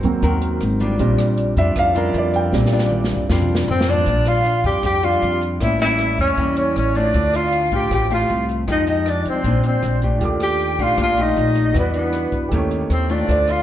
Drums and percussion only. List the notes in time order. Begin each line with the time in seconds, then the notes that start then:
0.03 kick, closed hi-hat, shaker
0.22 kick, closed hi-hat, shaker
0.41 closed hi-hat, shaker
0.61 cross-stick, closed hi-hat
0.80 closed hi-hat, shaker
0.99 kick, closed hi-hat, shaker
1.18 cross-stick, closed hi-hat, shaker
1.37 closed hi-hat, shaker
1.57 kick, closed hi-hat, shaker
1.76 kick, cross-stick, closed hi-hat, shaker
1.95 closed hi-hat, shaker
2.14 closed hi-hat
2.34 closed hi-hat, shaker
2.53 kick, snare, shaker
2.65 snare
2.72 shaker
2.78 snare
2.91 mid tom
3.04 snare
3.10 shaker
3.17 kick
3.29 kick, snare, shaker
3.42 mid tom
3.49 shaker
3.55 snare
3.68 floor tom
3.81 snare
3.87 shaker
3.93 floor tom
4.06 kick, closed hi-hat
4.25 cross-stick, closed hi-hat
4.45 closed hi-hat
4.64 kick, closed hi-hat
4.83 kick, cross-stick, closed hi-hat
5.02 closed hi-hat
5.22 closed hi-hat
5.41 closed hi-hat
5.60 kick, cross-stick, closed hi-hat
5.80 closed hi-hat
5.99 cross-stick, closed hi-hat
6.18 kick, closed hi-hat
6.37 kick, closed hi-hat
6.56 closed hi-hat
6.76 cross-stick, closed hi-hat
6.95 closed hi-hat
7.14 kick, closed hi-hat
7.33 cross-stick, closed hi-hat
7.53 closed hi-hat
7.72 kick, closed hi-hat
7.91 kick, cross-stick, closed hi-hat
8.10 closed hi-hat
8.30 closed hi-hat
8.49 closed hi-hat
8.68 kick, cross-stick, closed hi-hat
8.87 closed hi-hat
9.06 cross-stick, closed hi-hat
9.25 closed hi-hat
9.44 kick, closed hi-hat
9.63 closed hi-hat
9.83 cross-stick, closed hi-hat
10.02 kick, closed hi-hat
10.21 kick, closed hi-hat
10.40 cross-stick, closed hi-hat
10.59 closed hi-hat
10.79 kick, closed hi-hat
10.98 kick, cross-stick, closed hi-hat
11.17 closed hi-hat
11.36 closed hi-hat
11.55 closed hi-hat
11.74 kick, cross-stick, closed hi-hat
11.94 closed hi-hat
12.13 cross-stick, closed hi-hat
12.32 kick, closed hi-hat
12.52 kick, closed hi-hat
12.71 closed hi-hat
12.90 cross-stick, closed hi-hat
13.10 closed hi-hat
13.29 kick, closed hi-hat
13.48 cross-stick, closed hi-hat